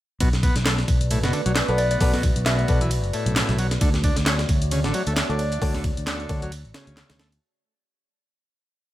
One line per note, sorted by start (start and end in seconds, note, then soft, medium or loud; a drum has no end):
0.20 0.49 B1 loud
0.20 0.29 B2 loud
0.20 3.78 A3 medium
0.20 3.78 F#4 medium
0.20 3.78 B4 medium
0.20 3.78 D5 medium
0.20 kick loud
0.20 closed hi-hat medium
0.20 ride medium
0.33 snare soft
0.33 closed hi-hat soft
0.43 0.55 B3 medium
0.43 kick loud
0.43 ride medium
0.56 0.83 B1 medium
0.56 snare soft
0.56 closed hi-hat medium
0.66 0.74 A3 medium
0.66 snare loud
0.66 clap loud
0.66 closed hi-hat medium
0.66 ride medium
0.78 snare soft
0.78 closed hi-hat soft
0.88 1.23 B1 medium
0.88 kick loud
0.88 ride medium
1.01 closed hi-hat medium
1.11 1.19 A2 medium
1.11 closed hi-hat medium
1.11 ride medium
1.23 1.30 F#1 loud
1.23 1.33 B2 loud
1.23 snare medium
1.23 closed hi-hat soft
1.33 1.41 D3 loud
1.33 ride medium
1.46 1.60 B1 medium
1.46 1.52 F#3 medium
1.46 closed hi-hat medium
1.46 ride soft
1.56 snare loud
1.56 clap loud
1.56 closed hi-hat medium
1.56 ride medium
1.68 1.96 B1 loud
1.68 2.12 B3 medium
1.68 1.78 F#4 medium
1.68 1.78 A4 medium
1.68 1.78 B4 medium
1.68 1.78 D5 medium
1.68 closed hi-hat soft
1.78 1.86 D5 medium
1.78 ride medium
1.91 1.97 D5 medium
1.91 closed hi-hat medium
1.91 ride soft
2.01 2.29 B1 loud
2.01 2.13 F#4 medium
2.01 2.13 A4 medium
2.01 2.13 B4 medium
2.01 2.13 D5 loud
2.01 kick loud
2.01 closed hi-hat medium
2.01 open hi-hat medium
2.13 2.23 B2 loud
2.13 snare soft
2.13 closed hi-hat soft
2.23 kick medium
2.23 ride medium
2.36 2.63 B1 medium
2.36 closed hi-hat medium
2.46 2.80 B2 medium
2.46 2.54 E5 medium
2.46 snare loud
2.46 clap loud
2.46 closed hi-hat medium
2.46 ride medium
2.59 2.65 E5 medium
2.59 closed hi-hat soft
2.68 3.04 B1 medium
2.68 2.81 F#4 medium
2.68 2.81 A4 medium
2.68 2.81 B4 medium
2.68 2.81 D5 medium
2.68 kick loud
2.68 ride medium
2.81 2.91 E3 medium
2.81 closed hi-hat medium
2.91 closed hi-hat medium
2.91 ride medium
3.04 3.10 F#1 loud
3.04 closed hi-hat soft
3.13 3.58 A2 medium
3.13 ride medium
3.26 3.40 B1 medium
3.26 closed hi-hat medium
3.36 snare loud
3.36 clap loud
3.36 closed hi-hat medium
3.36 ride medium
3.49 3.76 B1 loud
3.49 snare soft
3.49 closed hi-hat soft
3.58 3.67 F#3 medium
3.58 ride medium
3.71 snare soft
3.71 closed hi-hat medium
3.81 4.10 D2 loud
3.81 3.90 D3 loud
3.81 7.39 A3 medium
3.81 7.39 F#4 medium
3.81 7.39 C#5 medium
3.81 7.39 D5 medium
3.81 kick loud
3.81 closed hi-hat medium
3.81 ride medium
3.94 snare soft
3.94 closed hi-hat soft
4.04 4.16 D4 medium
4.04 kick loud
4.04 ride medium
4.16 4.44 D2 medium
4.16 snare soft
4.16 closed hi-hat medium
4.26 4.35 C#4 medium
4.26 snare loud
4.26 clap loud
4.26 closed hi-hat medium
4.26 ride medium
4.39 snare medium
4.39 closed hi-hat soft
4.49 4.84 D2 medium
4.49 kick loud
4.49 ride medium
4.62 closed hi-hat medium
4.71 4.80 C#3 medium
4.71 closed hi-hat medium
4.71 ride medium
4.84 4.91 A1 loud
4.84 4.94 D3 loud
4.84 snare medium
4.84 closed hi-hat soft
4.94 5.03 F#3 loud
4.94 ride medium
5.07 5.21 D2 medium
5.07 5.13 A3 medium
5.07 closed hi-hat medium
5.07 ride soft
5.16 snare loud
5.16 clap loud
5.16 closed hi-hat medium
5.16 ride medium
5.29 5.57 D2 loud
5.29 5.73 D4 medium
5.29 5.39 F#4 medium
5.29 5.39 A4 medium
5.29 5.39 C#5 medium
5.29 5.39 D5 medium
5.29 closed hi-hat soft
5.39 ride medium
5.52 closed hi-hat medium
5.52 ride soft
5.62 5.90 D2 loud
5.62 5.74 F#4 medium
5.62 5.74 A4 medium
5.62 5.74 C#5 medium
5.62 5.74 D5 loud
5.62 kick loud
5.62 closed hi-hat medium
5.62 open hi-hat medium
5.74 5.84 D3 loud
5.74 snare soft
5.74 closed hi-hat soft
5.84 kick loud
5.84 ride medium
5.97 6.24 D2 medium
5.97 closed hi-hat medium
6.07 6.41 D3 medium
6.07 snare loud
6.07 clap loud
6.07 closed hi-hat medium
6.07 ride medium
6.20 closed hi-hat soft
6.29 6.65 D2 medium
6.29 6.42 F#4 medium
6.29 6.42 A4 medium
6.29 6.42 C#5 medium
6.29 6.42 D5 medium
6.29 kick loud
6.29 ride medium
6.42 6.52 F#3 medium
6.42 closed hi-hat medium
6.52 closed hi-hat medium
6.52 ride medium
6.65 6.71 A1 loud
6.65 closed hi-hat soft
6.74 7.19 C#3 medium
6.74 snare loud
6.74 ride medium
6.87 7.01 D2 medium
6.87 closed hi-hat medium
6.97 snare loud
6.97 clap loud
6.97 closed hi-hat medium
6.97 ride medium
7.10 7.37 D2 loud
7.10 snare loud
7.10 closed hi-hat soft
7.10 ride medium
7.20 7.28 A3 medium
7.20 snare loud
7.20 ride medium
7.32 closed hi-hat medium
7.32 ride medium